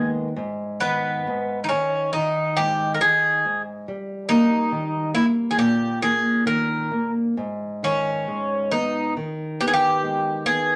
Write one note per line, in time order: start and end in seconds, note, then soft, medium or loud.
0.00 0.34 D#3 medium
0.00 0.27 G#3 soft
0.00 0.27 A#3 soft
0.00 0.28 B3 soft
0.36 1.26 G#2 medium
0.80 1.25 D#3 soft
0.80 1.59 B3 medium
1.27 1.70 G#2 soft
1.64 1.68 D#4 medium
1.69 2.14 D#3 soft
1.69 2.12 C#4 medium
2.13 3.01 D#3 medium
2.13 2.59 D#4 medium
2.57 3.00 G#2 soft
2.57 2.94 G4 medium
2.94 3.01 A#4 medium
3.01 3.43 D#3 soft
3.01 3.61 G#4 medium
3.45 3.86 G#2 soft
3.88 5.53 G3 medium
4.29 4.70 A#3 soft
4.29 5.10 D#4 medium
4.72 5.13 D#3 soft
5.14 5.55 A#3 soft
5.14 5.24 E4 medium
5.51 5.57 G#4 medium
5.57 7.32 A#2 medium
5.57 5.98 G4 medium
6.01 6.44 A#3 soft
6.01 6.43 G#4 medium
6.46 6.89 D#3 soft
6.46 7.10 A#4 medium
6.91 7.35 A#3 soft
7.37 9.12 G#2 medium
7.83 8.26 D#3 soft
7.83 8.71 C#4 medium
8.28 8.70 G#3 soft
8.71 9.15 B3 soft
8.71 9.13 D#4 medium
9.17 10.76 D#3 medium
9.61 10.02 B3 soft
9.61 9.67 G4 medium
9.68 9.73 G#4 medium
9.73 10.46 G4 medium
10.03 10.44 G#3 soft
10.46 10.76 B3 soft
10.46 10.76 G#4 medium